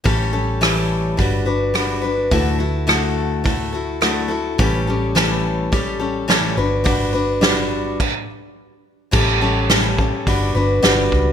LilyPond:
<<
  \new Staff \with { instrumentName = "Steel-string acoustic guitar" } { \time 4/4 \key a \mixolydian \tempo 4 = 106 <a, e g cis' g' a'>8 <g cis' g' a'>8 <a, e g cis' g' a'>4 <g d' fis' b'>8 <d' fis' b'>8 <g d' fis' b'>8 <d' fis' b'>8 | <d a e' fis' a'>8 <e' fis' a'>8 <d a e' fis' a'>4 <a e' fis' a'>8 <e' fis' a'>8 <d a e' fis' a'>8 <e' fis' a'>8 | <a, e g cis' g' a'>8 <g cis' g' a'>8 <a, e g cis' g' a'>4 <g cis' g' a'>8 <g cis' g' a'>8 <a, e g cis' g' a'>8 <d' fis' b'>8 | <g d' fis' b'>8 <d' fis' b'>8 <g d' fis' b'>4 r2 |
<a, e g cis' g' a'>8 <g cis' g' a'>8 <a, e g cis' g' a'>8 <g cis' g' a'>8 <g d' fis' b'>8 <d' fis' b'>8 <g d' fis' b'>4 | }
  \new Staff \with { instrumentName = "Fingered electric bass" } { \clef bass \time 4/4 \key a \mixolydian a,,2 g,,2 | d,1 | a,,2.~ a,,8 g,,8~ | g,,2 r2 |
a,,2 g,,8 g,,8 g,,8 cis,8 | }
  \new DrumStaff \with { instrumentName = "Drums" } \drummode { \time 4/4 <hho bd>4 <hho ss>4 <hho bd>4 <hho ss>4 | <hho bd>4 <hho ss>4 <hho bd>4 <hho ss>4 | <hho bd>4 <hho sn>4 <hho bd>4 <hho sn>4 | <hho bd>4 <hho sn>4 <cymc bd>4 r4 |
<cymc bd>4 <hho sn>8 bd8 <hho bd>4 <hho sn>8 bd8 | }
>>